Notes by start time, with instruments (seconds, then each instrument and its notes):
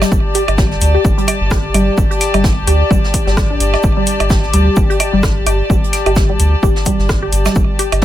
Already playing: string section G4 D5 A5
0.02 synth arpeggio sound G3, snare, percussion blips, shaker
0.12 analog synth bass G1, kick, shaker
0.35 synth arpeggio sound G4, open hi-hat, shaker
0.48 analog synth bass G1, open hi-hat, percussion blips
0.58 synth arpeggio sound G3, kick, snare, shaker
0.71 snare
0.81 analog synth bass D2, open hi-hat, shaker
0.95 synth arpeggio sound G4
1.05 analog synth bass G1, kick, shaker
1.18 synth arpeggio sound G3, closed hi-hat
1.28 open hi-hat, percussion blips, claves, shaker
1.41 analog synth bass G1
1.51 synth arpeggio sound G4, kick, cross-stick, snare, shaker
1.74 analog synth bass G1, synth arpeggio sound G3, open hi-hat, percussion blips, claves, shaker
1.98 analog synth bass G1, kick, shaker
2.11 synth arpeggio sound G4, closed hi-hat
2.20 snare, open hi-hat, claves, shaker
2.34 analog synth bass G1, synth arpeggio sound G3, open hi-hat, percussion blips
2.44 kick, snare, shaker
2.67 analog synth bass D2, synth arpeggio sound G4, open hi-hat, shaker
2.91 analog synth bass G1, synth arpeggio sound G3, kick, shaker
3.04 snare
3.14 kick, open hi-hat, shaker
3.27 analog synth bass G1, synth arpeggio sound G3, snare
3.37 kick, cross-stick, snare, shaker
3.50 synth arpeggio sound D4
3.60 analog synth bass G1, open hi-hat, shaker
3.74 snare, percussion blips
3.83 analog synth bass G1, kick, shaker
3.97 synth arpeggio sound G3
4.06 open hi-hat, shaker
4.20 analog synth bass G1, open hi-hat, percussion blips
4.30 synth arpeggio sound G4, kick, snare, shaker
4.43 snare
4.53 analog synth bass D2, synth arpeggio sound G3, open hi-hat, shaker
4.76 analog synth bass G1, kick, shaker
4.90 synth arpeggio sound G4, closed hi-hat
5.00 open hi-hat, percussion blips, claves, shaker
5.13 analog synth bass G1, synth arpeggio sound G3
5.23 kick, cross-stick, snare, shaker
5.46 analog synth bass G1, synth arpeggio sound G4, open hi-hat, percussion blips, claves, shaker
5.70 analog synth bass G1, synth arpeggio sound G3, kick, shaker
5.84 closed hi-hat
5.93 snare, open hi-hat, claves, shaker
6.06 analog synth bass G1, synth arpeggio sound G4, open hi-hat, percussion blips
6.16 kick, snare, shaker
6.29 synth arpeggio sound G3
6.39 analog synth bass D2, open hi-hat, shaker
6.63 analog synth bass G1, synth arpeggio sound G4, kick, shaker
6.76 snare
6.85 synth arpeggio sound G3, kick, open hi-hat, shaker
6.99 analog synth bass G1, snare
7.09 kick, cross-stick, snare, shaker
7.23 synth arpeggio sound G4
7.33 analog synth bass G1, open hi-hat, shaker
7.45 synth arpeggio sound G3, snare, percussion blips, shaker
7.55 analog synth bass G1, kick, shaker
7.79 synth arpeggio sound G4, open hi-hat, shaker
7.92 analog synth bass G1, open hi-hat, percussion blips
8.02 snare